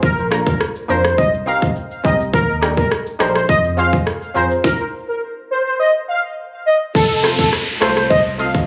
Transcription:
0.03 A#1 A#4, kick, shaker
0.18 shaker
0.31 A#3 D4 F4 A#4, cross-stick, shaker
0.47 A#4, kick, shaker
0.60 cross-stick, shaker
0.76 shaker
0.88 F2 A#3 D4 F4 A#4 C5, shaker
1.05 C5, cross-stick, shaker
1.18 C2 D#5, kick, shaker
1.34 shaker
1.46 C4 D#4 G4 A#4 F5, shaker
1.62 kick, shaker
1.76 shaker
1.91 shaker
2.04 C2 C4 D#4 G4 A#4 D#5, kick, shaker
2.20 shaker
2.33 D#2 A#4, kick, shaker
2.49 shaker
2.61 D4 D#4 G4 A#4, cross-stick, shaker
2.77 A#4, kick, shaker
2.91 cross-stick, shaker
3.06 shaker
3.19 A#1 D4 D#4 G4 A#4 C5, cross-stick, shaker
3.35 C5, cross-stick, shaker
3.49 F2 D#5, kick, shaker
3.64 shaker
3.77 C4 F4 G#4 C5 F5, shaker
3.93 kick, shaker
4.07 cross-stick, shaker
4.22 shaker
4.34 F2 C4 F4 G#4 A#4 C5, shaker
4.51 shaker
4.64 A#4, kick, snare
5.08 A#4
5.51 C5
5.66 C5
5.80 D#5
6.08 F5
6.66 D#5
6.95 F1 A4, kick, downlifter, shaker
7.10 shaker
7.23 A3 C4 F4 A4 C5, cross-stick, closed hi-hat, shaker
7.39 A4, kick, shaker
7.53 cross-stick, shaker
7.68 shaker
7.80 C2 A3 C4 F4 A4 C5, cross-stick, closed hi-hat, shaker
7.97 C5, cross-stick, shaker
8.10 D#5, kick, shaker
8.26 shaker
8.38 A3 C4 F4 A4 D#5 F5, closed hi-hat, shaker
8.54 kick, shaker

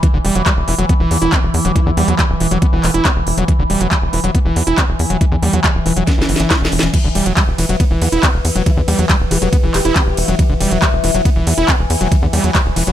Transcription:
Already playing: E3
0.03 E3, kick, closed hi-hat
0.14 E1 D3
0.25 E1 G3, open hi-hat
0.35 E1 F#3, closed hi-hat
0.46 G3, kick, clap, closed hi-hat
0.57 E1
0.68 E1 E3, open hi-hat
0.79 E1 F#3, closed hi-hat
0.89 B3, kick, closed hi-hat
1.00 E1 E3
1.11 E2 E3 B3, open hi-hat
1.22 E1 B3 E4, closed hi-hat
1.32 B3, kick, clap, closed hi-hat
1.43 E1
1.54 E2, open hi-hat
1.65 E1 F#3, closed hi-hat
1.76 E3 E4, kick, closed hi-hat
1.86 E2 D3
1.97 E2 G3 B3, open hi-hat
2.08 E2 F#3 B3, closed hi-hat
2.19 G3, kick, clap, closed hi-hat
2.30 D1
2.40 E1 E3, open hi-hat
2.51 E1 F#3, closed hi-hat
2.62 B3, kick, closed hi-hat
2.73 E1 E3 B3
2.84 E1 E3 B3, clap, open hi-hat
2.94 E1 E4, closed hi-hat
3.05 B3, kick, clap, closed hi-hat
3.16 E1
3.27 E1, open hi-hat
3.37 E1 F#3, closed hi-hat
3.48 E3, kick, closed hi-hat
3.59 E1 D3
3.70 E1 G3, open hi-hat
3.81 E1 F#3, closed hi-hat
3.91 G3, kick, clap, closed hi-hat
4.02 E1
4.13 E1 E3, open hi-hat
4.24 E1 F#3, closed hi-hat
4.35 B3, kick, closed hi-hat
4.45 E1 E3
4.56 E2 E3, open hi-hat
4.67 E1 E4, closed hi-hat
4.78 B3, kick, clap, closed hi-hat
4.89 E1
4.99 E2, open hi-hat
5.10 E1 F#3, closed hi-hat
5.21 E3, kick, closed hi-hat
5.32 E2 D3
5.43 E2 G3, open hi-hat
5.53 E2 F#3, closed hi-hat
5.64 G3, kick, clap, closed hi-hat
5.75 D1
5.86 E1 E3, open hi-hat
5.97 E1 F#3, closed hi-hat
6.07 B3, kick, snare, closed hi-hat
6.18 G1 E3, snare
6.29 G1 E3, open hi-hat
6.36 G1 E3, snare, closed hi-hat
6.50 E4, kick, snare, clap, closed hi-hat
6.61 E1, snare
6.72 E1, open hi-hat
6.79 E1 E3, snare, closed hi-hat
6.94 E3, kick, closed hi-hat, crash, ride
7.04 E1 D3
7.15 E1 G3, open hi-hat, ride
7.26 E1 F#3, closed hi-hat
7.37 G3, kick, clap, closed hi-hat, ride
7.48 E1
7.58 E1 E3, open hi-hat, ride
7.69 E1 F#3, closed hi-hat
7.80 B3, kick, closed hi-hat, ride
7.91 E1 E3
8.02 E2 E3 B3, open hi-hat, ride
8.12 E1 B3 E4, closed hi-hat
8.23 B3, kick, clap, closed hi-hat, ride
8.34 E1
8.45 E2, open hi-hat, ride
8.56 E1 F#3, closed hi-hat
8.66 E3 E4, kick, closed hi-hat, ride
8.77 E2 D3
8.88 E2 G3, open hi-hat, ride
8.99 E2 F#3, closed hi-hat
9.09 G3, kick, clap, closed hi-hat, ride
9.20 D1
9.31 E1 E3 G4, open hi-hat, ride
9.42 E1 F#3 G4, closed hi-hat
9.53 B3, kick, closed hi-hat, ride
9.63 E1 E3
9.74 E1 E3 G4, clap, open hi-hat, ride
9.85 E1 E4, closed hi-hat
9.96 B3, kick, clap, closed hi-hat, ride
10.07 E1
10.17 E1, open hi-hat, ride
10.28 E1 F#3, closed hi-hat
10.39 E3, kick, closed hi-hat, ride
10.50 E1 D3
10.61 E1 G3, open hi-hat, ride
10.71 E1 F#3, closed hi-hat
10.82 G3, kick, clap, closed hi-hat, ride
10.93 E1
11.04 E1 E3, open hi-hat, ride
11.14 E1 F#3, closed hi-hat
11.25 B3, kick, closed hi-hat, ride
11.36 E1 E3
11.47 E2 E3, open hi-hat, ride
11.58 E1 E4, closed hi-hat
11.68 B3, kick, clap, closed hi-hat, ride
11.79 E1
11.90 E2, open hi-hat, ride
12.01 E1 F#3, closed hi-hat
12.12 E3, kick, closed hi-hat, ride
12.22 E2 D3
12.33 E2 G3, open hi-hat, ride
12.44 E2 F#3, closed hi-hat
12.55 G3, kick, clap, closed hi-hat, ride
12.66 D1
12.76 E1 E3, open hi-hat, ride
12.87 E1 F#3, closed hi-hat

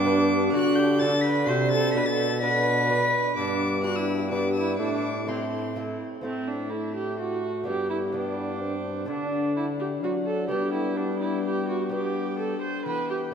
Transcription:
Already playing: G2 B3 D4 D6
0.05 D4 G4 B4
0.53 D3 D4 F#4 F#6
0.75 G4 G6
0.99 D4 F#4 A4 A6
1.21 B4 B6
1.46 C3 D4 F#4 A4 C5 C7
1.71 A4 A6
1.94 B2 D4 B4 B6
2.06 A4 A6
2.40 D4 F#4 B4 B6
2.89 D4 F#4 B4
3.36 G2 B3 D4 D6
3.83 D4 F#4 G4 B4 F#6
3.96 E4 E6
4.30 B3 D4 G4 B4 D6
4.54 E4 E6
4.77 A2 A3 D4 D6
5.26 A3 C4 E4 A4 C6
5.76 A3 E4 A4
6.21 A2 A3 C4 E4 A4 E5
6.48 D4
6.70 A3 E4 E5
6.95 G4
7.20 F#4 F#5
7.64 G2 B3 D4 G4
7.68 G5
7.90 E4
8.12 B3 D4 G5
8.60 C4
9.05 D3 A3 D4 F#5
9.56 E4
9.80 G4
10.03 F#3 D4 F#4 F#5
10.26 A4
10.48 G3 B3 D4 G4 G5
10.73 E4
10.95 B3 D4 G5
11.20 E4
11.45 G4
11.68 F#4
11.89 B3 D4 G4 G5
12.39 A4
12.62 C5
12.86 E3 B3 B4 G5
13.10 G4

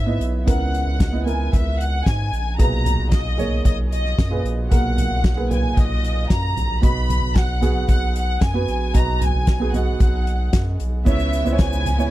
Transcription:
Already playing: G#2 C#3 B3 E4 C#5 E5
0.06 B3 E4 D#5
0.20 B1, closed hi-hat
0.46 C#2 C#3 B3 E4 A#4 F#5, kick, closed hi-hat
0.74 closed hi-hat
0.86 C#2
1.00 C#2, kick, snare, closed hi-hat
1.12 B3 E4 D#5
1.25 B3 E4 A#4 G#5, closed hi-hat
1.53 C#2 E5, kick, closed hi-hat
1.80 F#5, closed hi-hat
2.06 G#2 G#5, kick, snare, closed hi-hat
2.33 A#1, closed hi-hat
2.58 B1 A#2 B2 G#4 B4 A#5, kick, closed hi-hat
2.86 closed hi-hat, floor tom
2.99 B1
3.12 B1 D#5, kick, snare, closed hi-hat
3.37 A#3 G#4 C#5, closed hi-hat, floor tom
3.65 B1 D#5, kick, closed hi-hat
3.92 D#5, closed hi-hat
4.05 snare
4.18 F#2, kick, snare, closed hi-hat
4.30 A#2 G#4 B4
4.45 A#1, closed hi-hat
4.69 B1 B2 A#3 G#4 A#4 F#5, kick, closed hi-hat
4.98 closed hi-hat, floor tom
5.11 B1
5.24 B1, kick, snare, closed hi-hat
5.36 A#3 G#4 B4
5.49 A#2 G#4 B4 G#5, closed hi-hat, floor tom
5.77 B1 D#5, kick, closed hi-hat
6.04 closed hi-hat
6.30 F#2 A#5, kick, snare, closed hi-hat
6.56 A#1, closed hi-hat, floor tom
6.81 B1 B2 B3 F#4 D#5 B5, kick, closed hi-hat
7.10 closed hi-hat, floor tom
7.22 B1
7.35 B1 F#5, kick, snare, closed hi-hat
7.61 B3 F#4 G#4, closed hi-hat, floor tom
7.89 B1 F#5, kick, closed hi-hat
8.16 F#5, closed hi-hat
8.41 F#2 G#5, kick, snare, closed hi-hat
8.54 B3 F#4 B4
8.68 A#1, closed hi-hat
8.94 B1 B2 B3 F#4 D#5 A#5, kick, closed hi-hat
9.21 G#5, closed hi-hat, floor tom
9.35 B1
9.47 B1, kick, snare, closed hi-hat
9.60 B3 F#4 G#4
9.73 B3 F#4 D#5 F#5, closed hi-hat, floor tom
10.00 B1, kick, closed hi-hat
10.27 closed hi-hat
10.53 F#2, kick, snare, closed hi-hat
10.80 B1, closed hi-hat
11.05 C#2 C#3 G#3 B3 E4 C#5 E5, kick, crash, shaker
11.19 shaker
11.33 closed hi-hat, shaker
11.44 C#2 B3 E4 C5, shaker
11.53 C#5
11.58 C#2 G#5, kick, snare, closed hi-hat, shaker
11.73 shaker
11.86 closed hi-hat, floor tom
11.98 B3 E4 C#5, shaker

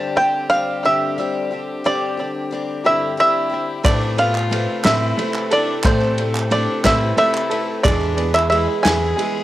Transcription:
Already playing: G2 D3 G3 C4 D4 G4 A5
0.17 C4 D4 G4 G5
0.21 G3
0.50 G3 C4 D4 F5
0.55 G4
0.85 G2 D3 G3 C4 D4 G4 E5
1.18 G3 C4 D4 G4
1.51 G3 C4 D4 G4
1.84 G2 D3 G3 C4 D4 G4 D5
2.17 G3 C4 D4 G4
2.51 G3 C4 D4 G4
2.84 G2 D3 G3 C4 D4 E4 G4 E5
3.17 G3 C4 D4 E4 G4 E5
3.49 G3 C4 D4 G4
3.83 A2 C3 E3 A3 C4 D4 E4 A4 B4 D5, kick, clap, ride
4.02 clap
4.16 A3 B3 C4 F4 B4 F5, ride
4.35 clap
4.50 A3 C4 B4, ride
4.83 A2 E3 A3 C4 E4 B4 E5, snare, clap, ride
5.17 A3 C4 E4 B4, ride
5.34 clap
5.50 A3 C4 D4 E4 A4 B4 D5, ride
5.84 A2 E3 A3 C4 E4 C5, kick, clap, ride
6.02 clap
6.18 A3 C4 E4, ride
6.35 clap
6.50 A3 C4 D4 E4 B4 D5, ride
6.84 A2 E3 A3 C4 E4 B4 E5, kick, snare, clap, ride
7.17 A3 C4 E4 B4 E5, ride
7.35 clap
7.50 A3 C4 E4 A4 B4, ride
7.83 E2 E3 G#3 B3 D4 E4 G#4 D5, kick, clap, ride
8.02 clap
8.17 B3 E4 G#4, ride
8.21 B3
8.34 E4 E5, clap
8.50 G#3 B3 E4 E5, ride
8.55 G#4
8.83 E2 B3 E4 G#4 G#5, snare, clap, ride
8.87 E3 G#3
9.18 G#3 B3 E4, ride
9.22 G#4

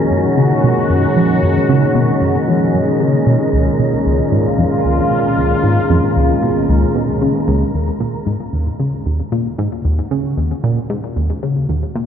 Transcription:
Already playing: A#2 D#3 G#3 C#4 F#4 G#4 A#4
0.11 F#2
0.37 C#3
0.64 B2
0.90 F#2
1.16 F3
1.43 F#2
1.69 C#3
1.95 B2
2.22 F#2
2.48 F3
2.74 F#2
3.00 C#3
3.27 B2
3.53 C#2 A#2
3.79 B2
3.90 F4
4.06 C#2
4.32 G#2
4.58 F2
4.85 C#2
5.11 B2
5.37 C#2
5.64 G#2
5.90 F2
6.16 C#2
6.42 B2
6.69 C#2
6.95 B2
7.22 C#3
7.48 C#2
7.74 D#2
7.79 D#3
8.00 A#2
8.24 G#2 C#4
8.46 F#4
8.53 D#2
8.80 C#3
9.06 D#2
9.32 A#2
9.58 G#2
9.85 D#2
10.11 C#3
10.37 D#2
10.64 A#2
10.90 G#2
11.16 D#2
11.43 C#3
11.69 D#2
11.95 A#2

